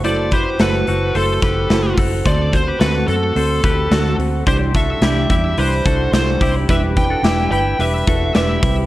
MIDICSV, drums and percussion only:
0, 0, Header, 1, 2, 480
1, 0, Start_track
1, 0, Key_signature, 1, "minor"
1, 0, Tempo, 553506
1, 38, Time_signature, 4, 2, 24, 8
1, 7685, End_track
2, 0, Start_track
2, 0, Title_t, "Drums"
2, 38, Note_on_c, 9, 44, 68
2, 38, Note_on_c, 9, 46, 102
2, 124, Note_off_c, 9, 46, 0
2, 125, Note_off_c, 9, 44, 0
2, 272, Note_on_c, 9, 46, 76
2, 275, Note_on_c, 9, 44, 58
2, 277, Note_on_c, 9, 36, 84
2, 359, Note_off_c, 9, 46, 0
2, 361, Note_off_c, 9, 44, 0
2, 364, Note_off_c, 9, 36, 0
2, 514, Note_on_c, 9, 46, 94
2, 515, Note_on_c, 9, 44, 64
2, 518, Note_on_c, 9, 38, 107
2, 600, Note_off_c, 9, 46, 0
2, 601, Note_off_c, 9, 44, 0
2, 604, Note_off_c, 9, 38, 0
2, 757, Note_on_c, 9, 46, 65
2, 759, Note_on_c, 9, 44, 66
2, 843, Note_off_c, 9, 46, 0
2, 846, Note_off_c, 9, 44, 0
2, 996, Note_on_c, 9, 44, 69
2, 998, Note_on_c, 9, 46, 89
2, 1083, Note_off_c, 9, 44, 0
2, 1085, Note_off_c, 9, 46, 0
2, 1234, Note_on_c, 9, 44, 65
2, 1234, Note_on_c, 9, 46, 72
2, 1235, Note_on_c, 9, 36, 101
2, 1241, Note_on_c, 9, 38, 36
2, 1321, Note_off_c, 9, 44, 0
2, 1321, Note_off_c, 9, 46, 0
2, 1322, Note_off_c, 9, 36, 0
2, 1328, Note_off_c, 9, 38, 0
2, 1474, Note_on_c, 9, 44, 62
2, 1474, Note_on_c, 9, 46, 89
2, 1477, Note_on_c, 9, 38, 109
2, 1561, Note_off_c, 9, 44, 0
2, 1561, Note_off_c, 9, 46, 0
2, 1564, Note_off_c, 9, 38, 0
2, 1713, Note_on_c, 9, 36, 98
2, 1715, Note_on_c, 9, 44, 71
2, 1716, Note_on_c, 9, 46, 77
2, 1800, Note_off_c, 9, 36, 0
2, 1802, Note_off_c, 9, 44, 0
2, 1803, Note_off_c, 9, 46, 0
2, 1956, Note_on_c, 9, 36, 97
2, 1957, Note_on_c, 9, 46, 96
2, 1958, Note_on_c, 9, 44, 62
2, 2042, Note_off_c, 9, 36, 0
2, 2044, Note_off_c, 9, 44, 0
2, 2044, Note_off_c, 9, 46, 0
2, 2195, Note_on_c, 9, 46, 78
2, 2196, Note_on_c, 9, 36, 84
2, 2197, Note_on_c, 9, 44, 58
2, 2282, Note_off_c, 9, 46, 0
2, 2283, Note_off_c, 9, 36, 0
2, 2284, Note_off_c, 9, 44, 0
2, 2432, Note_on_c, 9, 46, 97
2, 2433, Note_on_c, 9, 44, 64
2, 2436, Note_on_c, 9, 38, 114
2, 2519, Note_off_c, 9, 46, 0
2, 2520, Note_off_c, 9, 44, 0
2, 2523, Note_off_c, 9, 38, 0
2, 2670, Note_on_c, 9, 46, 68
2, 2672, Note_on_c, 9, 44, 70
2, 2757, Note_off_c, 9, 46, 0
2, 2759, Note_off_c, 9, 44, 0
2, 2913, Note_on_c, 9, 44, 69
2, 2915, Note_on_c, 9, 46, 89
2, 3000, Note_off_c, 9, 44, 0
2, 3002, Note_off_c, 9, 46, 0
2, 3155, Note_on_c, 9, 36, 105
2, 3156, Note_on_c, 9, 44, 70
2, 3156, Note_on_c, 9, 46, 73
2, 3241, Note_off_c, 9, 36, 0
2, 3243, Note_off_c, 9, 44, 0
2, 3243, Note_off_c, 9, 46, 0
2, 3395, Note_on_c, 9, 44, 62
2, 3395, Note_on_c, 9, 46, 96
2, 3397, Note_on_c, 9, 38, 114
2, 3481, Note_off_c, 9, 44, 0
2, 3481, Note_off_c, 9, 46, 0
2, 3484, Note_off_c, 9, 38, 0
2, 3638, Note_on_c, 9, 44, 68
2, 3639, Note_on_c, 9, 46, 80
2, 3724, Note_off_c, 9, 44, 0
2, 3725, Note_off_c, 9, 46, 0
2, 3872, Note_on_c, 9, 46, 92
2, 3873, Note_on_c, 9, 44, 64
2, 3874, Note_on_c, 9, 36, 104
2, 3959, Note_off_c, 9, 44, 0
2, 3959, Note_off_c, 9, 46, 0
2, 3961, Note_off_c, 9, 36, 0
2, 4111, Note_on_c, 9, 46, 68
2, 4114, Note_on_c, 9, 44, 63
2, 4116, Note_on_c, 9, 36, 87
2, 4198, Note_off_c, 9, 46, 0
2, 4201, Note_off_c, 9, 44, 0
2, 4203, Note_off_c, 9, 36, 0
2, 4350, Note_on_c, 9, 46, 104
2, 4351, Note_on_c, 9, 44, 67
2, 4355, Note_on_c, 9, 38, 108
2, 4437, Note_off_c, 9, 46, 0
2, 4438, Note_off_c, 9, 44, 0
2, 4441, Note_off_c, 9, 38, 0
2, 4593, Note_on_c, 9, 46, 67
2, 4596, Note_on_c, 9, 36, 87
2, 4596, Note_on_c, 9, 44, 61
2, 4680, Note_off_c, 9, 46, 0
2, 4682, Note_off_c, 9, 36, 0
2, 4682, Note_off_c, 9, 44, 0
2, 4833, Note_on_c, 9, 44, 72
2, 4835, Note_on_c, 9, 46, 91
2, 4919, Note_off_c, 9, 44, 0
2, 4921, Note_off_c, 9, 46, 0
2, 5077, Note_on_c, 9, 44, 69
2, 5077, Note_on_c, 9, 46, 72
2, 5078, Note_on_c, 9, 36, 98
2, 5163, Note_off_c, 9, 44, 0
2, 5163, Note_off_c, 9, 46, 0
2, 5165, Note_off_c, 9, 36, 0
2, 5318, Note_on_c, 9, 44, 65
2, 5318, Note_on_c, 9, 46, 91
2, 5321, Note_on_c, 9, 38, 116
2, 5405, Note_off_c, 9, 44, 0
2, 5405, Note_off_c, 9, 46, 0
2, 5408, Note_off_c, 9, 38, 0
2, 5559, Note_on_c, 9, 36, 96
2, 5563, Note_on_c, 9, 44, 67
2, 5564, Note_on_c, 9, 46, 74
2, 5645, Note_off_c, 9, 36, 0
2, 5649, Note_off_c, 9, 44, 0
2, 5650, Note_off_c, 9, 46, 0
2, 5801, Note_on_c, 9, 36, 106
2, 5803, Note_on_c, 9, 44, 63
2, 5803, Note_on_c, 9, 46, 94
2, 5888, Note_off_c, 9, 36, 0
2, 5890, Note_off_c, 9, 44, 0
2, 5890, Note_off_c, 9, 46, 0
2, 6039, Note_on_c, 9, 46, 76
2, 6042, Note_on_c, 9, 36, 88
2, 6042, Note_on_c, 9, 44, 61
2, 6126, Note_off_c, 9, 46, 0
2, 6129, Note_off_c, 9, 36, 0
2, 6129, Note_off_c, 9, 44, 0
2, 6280, Note_on_c, 9, 46, 104
2, 6281, Note_on_c, 9, 44, 64
2, 6284, Note_on_c, 9, 38, 109
2, 6367, Note_off_c, 9, 46, 0
2, 6368, Note_off_c, 9, 44, 0
2, 6371, Note_off_c, 9, 38, 0
2, 6520, Note_on_c, 9, 46, 66
2, 6522, Note_on_c, 9, 44, 65
2, 6606, Note_off_c, 9, 46, 0
2, 6609, Note_off_c, 9, 44, 0
2, 6760, Note_on_c, 9, 44, 69
2, 6762, Note_on_c, 9, 46, 90
2, 6847, Note_off_c, 9, 44, 0
2, 6849, Note_off_c, 9, 46, 0
2, 7000, Note_on_c, 9, 44, 72
2, 7000, Note_on_c, 9, 46, 69
2, 7002, Note_on_c, 9, 36, 109
2, 7087, Note_off_c, 9, 44, 0
2, 7087, Note_off_c, 9, 46, 0
2, 7089, Note_off_c, 9, 36, 0
2, 7237, Note_on_c, 9, 44, 65
2, 7237, Note_on_c, 9, 46, 88
2, 7240, Note_on_c, 9, 38, 109
2, 7324, Note_off_c, 9, 44, 0
2, 7324, Note_off_c, 9, 46, 0
2, 7327, Note_off_c, 9, 38, 0
2, 7482, Note_on_c, 9, 36, 116
2, 7484, Note_on_c, 9, 44, 65
2, 7485, Note_on_c, 9, 46, 72
2, 7569, Note_off_c, 9, 36, 0
2, 7571, Note_off_c, 9, 44, 0
2, 7572, Note_off_c, 9, 46, 0
2, 7685, End_track
0, 0, End_of_file